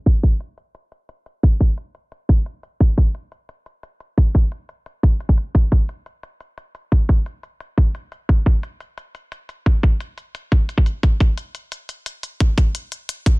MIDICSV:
0, 0, Header, 1, 2, 480
1, 0, Start_track
1, 0, Tempo, 342857
1, 87, Time_signature, 4, 2, 24, 8
1, 18752, End_track
2, 0, Start_track
2, 0, Title_t, "Drums"
2, 87, Note_on_c, 9, 36, 113
2, 87, Note_on_c, 9, 42, 82
2, 227, Note_off_c, 9, 36, 0
2, 227, Note_off_c, 9, 42, 0
2, 326, Note_on_c, 9, 42, 63
2, 327, Note_on_c, 9, 36, 102
2, 466, Note_off_c, 9, 42, 0
2, 467, Note_off_c, 9, 36, 0
2, 567, Note_on_c, 9, 42, 87
2, 707, Note_off_c, 9, 42, 0
2, 807, Note_on_c, 9, 42, 57
2, 947, Note_off_c, 9, 42, 0
2, 1046, Note_on_c, 9, 42, 84
2, 1186, Note_off_c, 9, 42, 0
2, 1286, Note_on_c, 9, 42, 59
2, 1426, Note_off_c, 9, 42, 0
2, 1526, Note_on_c, 9, 42, 84
2, 1666, Note_off_c, 9, 42, 0
2, 1766, Note_on_c, 9, 42, 61
2, 1906, Note_off_c, 9, 42, 0
2, 2006, Note_on_c, 9, 42, 82
2, 2007, Note_on_c, 9, 36, 110
2, 2146, Note_off_c, 9, 42, 0
2, 2147, Note_off_c, 9, 36, 0
2, 2246, Note_on_c, 9, 42, 61
2, 2247, Note_on_c, 9, 36, 94
2, 2386, Note_off_c, 9, 42, 0
2, 2387, Note_off_c, 9, 36, 0
2, 2486, Note_on_c, 9, 42, 83
2, 2626, Note_off_c, 9, 42, 0
2, 2727, Note_on_c, 9, 42, 56
2, 2867, Note_off_c, 9, 42, 0
2, 2966, Note_on_c, 9, 42, 88
2, 3106, Note_off_c, 9, 42, 0
2, 3206, Note_on_c, 9, 42, 59
2, 3207, Note_on_c, 9, 36, 96
2, 3346, Note_off_c, 9, 42, 0
2, 3347, Note_off_c, 9, 36, 0
2, 3446, Note_on_c, 9, 42, 82
2, 3586, Note_off_c, 9, 42, 0
2, 3686, Note_on_c, 9, 42, 60
2, 3826, Note_off_c, 9, 42, 0
2, 3926, Note_on_c, 9, 36, 111
2, 3926, Note_on_c, 9, 42, 81
2, 4066, Note_off_c, 9, 36, 0
2, 4066, Note_off_c, 9, 42, 0
2, 4166, Note_on_c, 9, 36, 96
2, 4166, Note_on_c, 9, 42, 62
2, 4306, Note_off_c, 9, 36, 0
2, 4306, Note_off_c, 9, 42, 0
2, 4406, Note_on_c, 9, 42, 87
2, 4546, Note_off_c, 9, 42, 0
2, 4645, Note_on_c, 9, 42, 58
2, 4785, Note_off_c, 9, 42, 0
2, 4886, Note_on_c, 9, 42, 86
2, 5026, Note_off_c, 9, 42, 0
2, 5126, Note_on_c, 9, 42, 60
2, 5266, Note_off_c, 9, 42, 0
2, 5366, Note_on_c, 9, 42, 91
2, 5506, Note_off_c, 9, 42, 0
2, 5606, Note_on_c, 9, 42, 62
2, 5746, Note_off_c, 9, 42, 0
2, 5846, Note_on_c, 9, 36, 108
2, 5846, Note_on_c, 9, 42, 89
2, 5986, Note_off_c, 9, 36, 0
2, 5986, Note_off_c, 9, 42, 0
2, 6086, Note_on_c, 9, 36, 97
2, 6086, Note_on_c, 9, 42, 68
2, 6226, Note_off_c, 9, 36, 0
2, 6226, Note_off_c, 9, 42, 0
2, 6325, Note_on_c, 9, 42, 92
2, 6465, Note_off_c, 9, 42, 0
2, 6566, Note_on_c, 9, 42, 60
2, 6706, Note_off_c, 9, 42, 0
2, 6806, Note_on_c, 9, 42, 93
2, 6946, Note_off_c, 9, 42, 0
2, 7046, Note_on_c, 9, 36, 95
2, 7046, Note_on_c, 9, 42, 65
2, 7186, Note_off_c, 9, 36, 0
2, 7186, Note_off_c, 9, 42, 0
2, 7286, Note_on_c, 9, 42, 92
2, 7406, Note_on_c, 9, 36, 59
2, 7426, Note_off_c, 9, 42, 0
2, 7527, Note_on_c, 9, 42, 62
2, 7546, Note_off_c, 9, 36, 0
2, 7667, Note_off_c, 9, 42, 0
2, 7766, Note_on_c, 9, 36, 110
2, 7766, Note_on_c, 9, 42, 87
2, 7906, Note_off_c, 9, 36, 0
2, 7906, Note_off_c, 9, 42, 0
2, 8006, Note_on_c, 9, 36, 100
2, 8007, Note_on_c, 9, 42, 67
2, 8146, Note_off_c, 9, 36, 0
2, 8147, Note_off_c, 9, 42, 0
2, 8247, Note_on_c, 9, 42, 94
2, 8387, Note_off_c, 9, 42, 0
2, 8486, Note_on_c, 9, 42, 66
2, 8626, Note_off_c, 9, 42, 0
2, 8727, Note_on_c, 9, 42, 94
2, 8867, Note_off_c, 9, 42, 0
2, 8967, Note_on_c, 9, 42, 65
2, 9107, Note_off_c, 9, 42, 0
2, 9207, Note_on_c, 9, 42, 92
2, 9347, Note_off_c, 9, 42, 0
2, 9447, Note_on_c, 9, 42, 68
2, 9587, Note_off_c, 9, 42, 0
2, 9687, Note_on_c, 9, 36, 112
2, 9687, Note_on_c, 9, 42, 91
2, 9827, Note_off_c, 9, 36, 0
2, 9827, Note_off_c, 9, 42, 0
2, 9926, Note_on_c, 9, 42, 68
2, 9927, Note_on_c, 9, 36, 105
2, 10066, Note_off_c, 9, 42, 0
2, 10067, Note_off_c, 9, 36, 0
2, 10167, Note_on_c, 9, 42, 91
2, 10307, Note_off_c, 9, 42, 0
2, 10407, Note_on_c, 9, 42, 64
2, 10547, Note_off_c, 9, 42, 0
2, 10646, Note_on_c, 9, 42, 93
2, 10786, Note_off_c, 9, 42, 0
2, 10886, Note_on_c, 9, 36, 102
2, 10887, Note_on_c, 9, 42, 66
2, 11026, Note_off_c, 9, 36, 0
2, 11027, Note_off_c, 9, 42, 0
2, 11127, Note_on_c, 9, 42, 93
2, 11267, Note_off_c, 9, 42, 0
2, 11367, Note_on_c, 9, 42, 68
2, 11507, Note_off_c, 9, 42, 0
2, 11606, Note_on_c, 9, 36, 118
2, 11607, Note_on_c, 9, 42, 89
2, 11746, Note_off_c, 9, 36, 0
2, 11747, Note_off_c, 9, 42, 0
2, 11846, Note_on_c, 9, 36, 109
2, 11847, Note_on_c, 9, 42, 67
2, 11986, Note_off_c, 9, 36, 0
2, 11987, Note_off_c, 9, 42, 0
2, 12086, Note_on_c, 9, 42, 93
2, 12226, Note_off_c, 9, 42, 0
2, 12326, Note_on_c, 9, 42, 64
2, 12466, Note_off_c, 9, 42, 0
2, 12566, Note_on_c, 9, 42, 91
2, 12706, Note_off_c, 9, 42, 0
2, 12806, Note_on_c, 9, 42, 64
2, 12946, Note_off_c, 9, 42, 0
2, 13047, Note_on_c, 9, 42, 94
2, 13187, Note_off_c, 9, 42, 0
2, 13286, Note_on_c, 9, 42, 64
2, 13426, Note_off_c, 9, 42, 0
2, 13526, Note_on_c, 9, 36, 118
2, 13526, Note_on_c, 9, 42, 86
2, 13666, Note_off_c, 9, 36, 0
2, 13666, Note_off_c, 9, 42, 0
2, 13766, Note_on_c, 9, 36, 107
2, 13767, Note_on_c, 9, 42, 65
2, 13906, Note_off_c, 9, 36, 0
2, 13907, Note_off_c, 9, 42, 0
2, 14007, Note_on_c, 9, 42, 89
2, 14147, Note_off_c, 9, 42, 0
2, 14247, Note_on_c, 9, 42, 58
2, 14387, Note_off_c, 9, 42, 0
2, 14487, Note_on_c, 9, 42, 91
2, 14627, Note_off_c, 9, 42, 0
2, 14726, Note_on_c, 9, 36, 103
2, 14727, Note_on_c, 9, 42, 60
2, 14866, Note_off_c, 9, 36, 0
2, 14867, Note_off_c, 9, 42, 0
2, 14966, Note_on_c, 9, 42, 87
2, 15086, Note_on_c, 9, 36, 65
2, 15106, Note_off_c, 9, 42, 0
2, 15207, Note_on_c, 9, 42, 62
2, 15226, Note_off_c, 9, 36, 0
2, 15347, Note_off_c, 9, 42, 0
2, 15446, Note_on_c, 9, 36, 109
2, 15446, Note_on_c, 9, 42, 82
2, 15586, Note_off_c, 9, 36, 0
2, 15586, Note_off_c, 9, 42, 0
2, 15686, Note_on_c, 9, 36, 104
2, 15686, Note_on_c, 9, 42, 61
2, 15826, Note_off_c, 9, 36, 0
2, 15826, Note_off_c, 9, 42, 0
2, 15926, Note_on_c, 9, 42, 85
2, 16066, Note_off_c, 9, 42, 0
2, 16166, Note_on_c, 9, 42, 57
2, 16306, Note_off_c, 9, 42, 0
2, 16406, Note_on_c, 9, 42, 83
2, 16546, Note_off_c, 9, 42, 0
2, 16646, Note_on_c, 9, 42, 57
2, 16786, Note_off_c, 9, 42, 0
2, 16886, Note_on_c, 9, 42, 88
2, 17026, Note_off_c, 9, 42, 0
2, 17126, Note_on_c, 9, 42, 62
2, 17266, Note_off_c, 9, 42, 0
2, 17366, Note_on_c, 9, 36, 111
2, 17366, Note_on_c, 9, 42, 83
2, 17506, Note_off_c, 9, 36, 0
2, 17506, Note_off_c, 9, 42, 0
2, 17607, Note_on_c, 9, 36, 100
2, 17607, Note_on_c, 9, 42, 62
2, 17747, Note_off_c, 9, 36, 0
2, 17747, Note_off_c, 9, 42, 0
2, 17847, Note_on_c, 9, 42, 82
2, 17987, Note_off_c, 9, 42, 0
2, 18087, Note_on_c, 9, 42, 61
2, 18227, Note_off_c, 9, 42, 0
2, 18327, Note_on_c, 9, 42, 88
2, 18467, Note_off_c, 9, 42, 0
2, 18567, Note_on_c, 9, 36, 95
2, 18567, Note_on_c, 9, 42, 59
2, 18707, Note_off_c, 9, 36, 0
2, 18707, Note_off_c, 9, 42, 0
2, 18752, End_track
0, 0, End_of_file